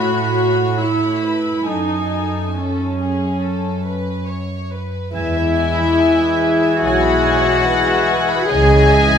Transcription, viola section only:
0.00 0.79 F#4 medium
0.79 1.66 E4 medium
1.66 2.55 D#4 medium
2.54 4.27 C#4 soft
5.15 8.47 E3 soft
5.15 8.47 G#4 soft
8.51 9.18 E3 medium
8.51 9.18 G#4 medium

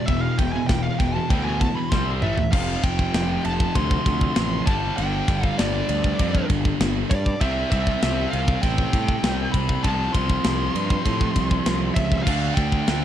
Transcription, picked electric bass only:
0.08 0.27 E1 loud
0.39 0.57 E1 medium
0.69 0.88 E1 medium
1.00 1.18 E1 medium
1.30 1.67 D2 loud
1.92 2.23 C2 medium
2.23 2.42 A1 medium
2.53 2.76 F1 loud
2.83 3.06 F1 medium
3.14 3.37 F1 medium
3.46 3.68 F1 medium
3.75 3.98 D2 medium
4.06 4.29 D2 medium
4.37 4.60 A1 medium
4.67 4.90 G1 medium
4.98 5.21 G1 loud
5.28 5.51 G1 medium
5.60 5.82 G1 medium
5.89 6.12 D2 medium
6.20 6.42 F2 loud
6.50 6.72 G1 medium
6.80 7.03 G1 loud
7.11 7.33 G2 medium
7.41 7.64 C2 loud
7.72 7.94 C2 medium
8.03 8.25 C2 medium
8.33 8.56 C2 medium
8.63 8.86 A1 loud
8.93 9.16 A2 medium
9.23 9.46 C2 medium
9.54 9.77 C2 medium
9.85 10.07 C2 loud
10.15 10.37 C2 medium
10.45 10.68 C2 medium
10.75 10.98 G2 medium
11.06 11.29 A2 medium
11.36 11.59 C2 loud
11.66 11.89 C2 medium
11.96 12.19 C#2 medium
12.27 12.50 D2 loud
12.57 12.80 D2 medium
12.88 13.05 D2 medium

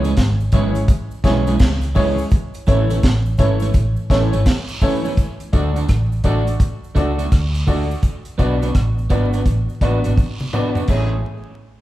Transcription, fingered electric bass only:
0.00 0.13 C#2 loud
0.18 0.49 G#1 loud
0.54 0.85 G#1 medium
1.25 1.56 B1 loud
1.61 2.22 C#2 medium
2.68 2.99 A1 loud
3.04 3.35 A1 loud
3.40 3.70 G#1 medium
3.75 3.95 A1 loud
4.11 4.30 A1 loud
4.34 4.45 G#1 loud
5.54 5.84 D2 medium
5.90 6.20 A1 loud
6.25 6.56 A1 medium
6.96 7.27 C#2 medium
7.33 7.94 D2 loud
8.40 8.70 B1 loud
8.75 9.06 A1 loud
9.11 9.41 G#1 medium
9.46 9.66 A1 medium
9.82 10.01 A1 medium
10.06 10.16 G#1 medium
10.89 11.22 A1 medium

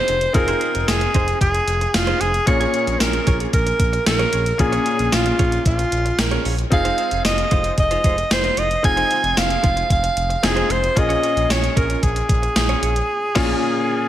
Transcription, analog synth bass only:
0.08 0.27 F1 loud
0.34 0.54 F1 loud
0.75 0.84 F1 loud
0.88 1.07 F1 loud
1.15 1.34 F1 loud
1.41 1.60 F1 loud
1.67 1.86 F1 loud
1.94 2.13 F1 loud
2.21 2.40 F1 medium
2.47 2.66 A#1 loud
2.87 2.97 A#1 loud
3.00 3.19 A#1 loud
3.27 3.46 A#1 medium
3.53 3.72 A#1 loud
3.80 3.99 A#1 medium
4.07 4.26 A#1 loud
4.33 4.52 A#1 medium
4.60 4.79 A#1 loud
4.99 5.09 A#1 medium
5.13 5.32 A#1 loud
5.39 5.58 A#1 medium
5.66 5.85 A#1 loud
5.92 6.11 A#1 medium
6.18 6.38 A#1 loud
6.45 6.64 A#1 medium
6.72 6.91 F1 loud
7.11 7.21 F1 medium
7.25 7.44 F1 loud
7.51 7.71 F1 loud
7.78 7.97 F1 loud
8.04 8.23 F1 loud
8.31 8.50 F1 medium
8.57 8.77 F1 loud
8.84 9.03 F1 loud
9.23 9.33 F1 loud
9.37 9.56 F1 loud
9.64 9.83 F1 loud
9.90 10.09 F1 loud
10.17 10.36 F1 loud
10.43 10.63 F1 loud
10.70 10.89 F1 medium
10.97 11.16 A#1 loud
11.36 11.46 A#1 loud
11.49 11.69 A#1 loud
11.77 11.96 A#1 loud
12.03 12.22 A#1 loud
12.29 12.48 A#1 medium
12.56 12.75 A#1 loud
12.82 13.01 A#1 medium
13.36 13.54 A#1 loud

